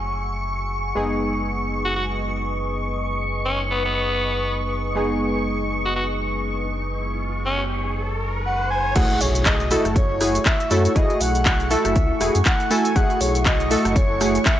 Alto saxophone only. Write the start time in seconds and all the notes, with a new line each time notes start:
1.85 F#4
1.96 F#4
3.46 C#4
3.71 B3
3.85 B3
5.85 F#4
5.96 F#4
7.46 C#4